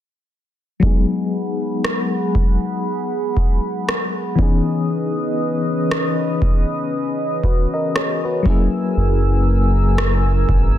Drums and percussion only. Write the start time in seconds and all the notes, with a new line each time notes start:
0.83 kick
1.85 cross-stick
2.35 kick
3.37 kick
3.89 cross-stick
4.39 kick
5.91 cross-stick
6.42 kick
7.44 kick
7.96 cross-stick
8.46 kick
9.98 cross-stick
10.49 kick